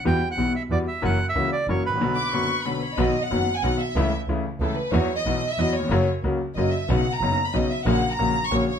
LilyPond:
<<
  \new Staff \with { instrumentName = "Bandoneon" } { \time 3/4 \key b \minor \tempo 4 = 184 g''8. fis''8. e''8 d''8 e''8 | fis''8. e''8. d''8 cis''8 b'8~ | b'2 r4 | \key b \major r2. |
r2. | r2. | r2. | r2. |
r2. | }
  \new Staff \with { instrumentName = "Violin section" } { \time 3/4 \key b \minor << { r2. | r2. | r8 d'''8 cis'''4 b''4 | \key b \major r2. |
r2. | r2. | r2. | r2. |
r2. | } \\ { r2. | r2. | r2 b'8 cis''8 | dis''8. fis''4 gis''16 fis''8 e''8~ |
e''8 r4. a'8 b'8 | cis''8. dis''4 e''16 dis''8 cis''8~ | cis''8 r4. dis''8 e''8 | fis''8. ais''4 b''16 dis''8 e''8 |
fis''8. ais''4 cis'''16 cis''8 cis''8 | } >> }
  \new Staff \with { instrumentName = "Grand piano" } { \clef bass \time 3/4 \key b \minor <e, e g b fis'>8 r8 <b,, b, e g b fis'>8 r8 <e, e g b fis'>8 r8 | <fis, e fis ais cis' fis'>8 r8 <cis, cis e ais cis' fis'>8 r8 <fis, e fis ais cis' fis'>8 r32 gis,,32 a,,32 ais,,32 | <b,, b, d fis b fis'>8 r8 <fis,, fis, d fis b fis'>8 r8 <b,, b, d fis b fis'>8 r8 | \key b \major <b,, b, dis fis b fis'>8 r8 <fis,, fis, dis fis b fis'>8 r8 <b,, b, dis fis b fis'>8 r8 |
<cis, cis e a e'>8 r8 <cis, cis e a e'>8 r8 <cis, cis e a e'>8 r8 | <e, e fis b fis'>8 r8 <b,, b, e fis b fis'>8 r8 <e, e fis b fis'>8 r32 dis,32 e,32 eis,32 | <fis, cis fis ais fis'>8 r8 <cis, cis fis ais fis'>8 r8 <fis, cis fis ais fis'>8 r8 | <b,, b, cis fis b dis'>8 r8 <fis,, fis, cis fis b dis'>8 r8 <b,, b, cis fis b dis'>8 r8 |
<ais,, ais, cis fis ais fis'>8 r8 <ais,, ais, cis fis ais fis'>8 r8 <ais,, ais, cis fis ais fis'>8 r8 | }
  \new Staff \with { instrumentName = "Double bass" } { \clef bass \time 3/4 \key b \minor e,8 r8 b,,8 r8 e,8 r8 | fis,,8 r8 cis,8 r8 fis,,8 r8 | r2. | \key b \major b,,8 r8 fis,,8 r8 b,,8 r8 |
cis,8 r8 cis,8 r8 cis,8 r8 | e,8 r8 b,,8 r8 e,8 r8 | fis,,8 r8 cis,8 r8 fis,,8 r8 | b,,8 r8 fis,,8 r8 b,,8 r8 |
ais,,8 r8 ais,,8 r8 ais,,8 r8 | }
>>